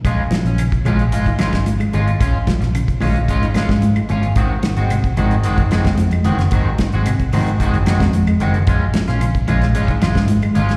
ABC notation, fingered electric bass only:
X:1
M:4/4
L:1/16
Q:1/4=111
K:Bbm
V:1 name="Fingered electric bass" clef=bass
B,,, z2 B,,,2 z B,,,2 A,,,3 A,,3 A,,,2 | B,,, z2 B,,,2 z B,,,2 A,,,3 A,,3 A,,,2 | A,,, z2 A,,,2 z A,,,2 G,,,3 F,,3 G,,,2 | A,,, z2 A,,,2 z A,,,2 G,,,3 F,,3 G,,,2 |
B,,, z2 B,,,2 z B,,,2 A,,,3 A,,3 A,,,2 |]